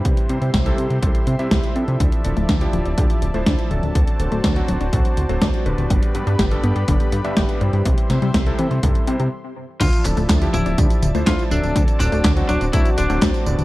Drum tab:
CC |----------------|----------------|----------------|----------------|
HH |xxxxxxxxxxxxxxxx|xxxxxxxxxxxxxxxx|xxxxxxxxxxxxxxxx|xxxxxxxxxxxxxxxx|
TB |----------------|----------------|----------------|----------------|
CP |----------------|----------------|----------------|----------------|
SD |----o-------o---|----o-------o---|----o-------o---|----o-------o---|
BD |o---o---o---o---|o---o---o---o---|o---o---o---o---|o---o---o---o---|

CC |----------------|x---------------|----------------|
HH |xxxxxxxxxxxx----|xxxxxxxxxxxxxxxx|xxxxxxxxxxxxxxxx|
TB |----------------|xxxxxxxxxxxxxxxx|xxxxxxxxxxxxxxxx|
CP |----------------|--x-x-------x---|--x-x-------x---|
SD |--o-o-----------|----o-------o---|----o-------o---|
BD |o---o---o-------|o---o---o---o---|o---o---o---o---|